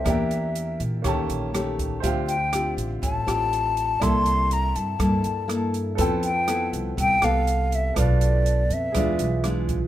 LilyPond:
<<
  \new Staff \with { instrumentName = "Flute" } { \time 4/4 \key c \major \tempo 4 = 122 e''4. r2 r8 | r8 g''4 r8 a''2 | c'''4 bes''8 a''2 r8 | r8 g''4 r8 g''8 f''4 e''8 |
d''4. e''4. r4 | }
  \new Staff \with { instrumentName = "Grand piano" } { \time 4/4 \key c \major <bes' d'' e'' g''>2 <ais cis'' g'' a''>2 | <c'' e'' f'' g''>1 | <d'' e'' a''>1 | <a' b' g'' e'''>1 |
<a' b' d'' f''>2 <f' gis' b' d''>2 | }
  \new Staff \with { instrumentName = "Nylon-string guitar" } { \time 4/4 \key c \major << { <bes d' g'>2 <a cis' g'>4 <a cis' g'>4 | <c' f' g'>8 r8 <c' f' g'>4. <c' f' g'>4. | <bes e' a'>2 <bes e' a'>4 <bes e' a'>4 | <b e' a'>8 r8 <b e' a'>4. <b a'>4. |
<a d' f'>4. r8 <gis d' f'>8 r8 <gis d' f'>8 r8 | } \\ { e2 dis2 | d2 a,2 | c2 g,2 | f2 c2 |
b,2 e2 | } >> }
  \new Staff \with { instrumentName = "Upright bass" } { \clef bass \time 4/4 \key c \major e,4. bes,8 dis,8 ais,,4. | d,4. a,,8 a,,8 a,,4. | c,4. g,8 g,8 g,4. | f,4. c,8 c,8 c,4. |
b,,4. f,8 e,8 b,,4. | }
  \new DrumStaff \with { instrumentName = "Drums" } \drummode { \time 4/4 <hh bd ss>8 hh8 hh8 hh8 <hh bd ss>8 hh8 <hh ss>8 <hh bd>8 | <hh bd>8 hh8 <hh ss>8 hh8 <hh bd>8 <hh ss>8 hh8 hh8 | <hh bd ss>8 hh8 hh8 hh8 <hh bd ss>8 hh8 <hh ss>8 hh8 | <hh bd>8 hh8 <hh ss>8 hh8 <hh bd>8 <hh ss>8 hh8 hh8 |
<hh bd ss>8 hh8 hh8 hh8 <hh bd ss>8 hh8 <hh ss>8 <hh bd>8 | }
>>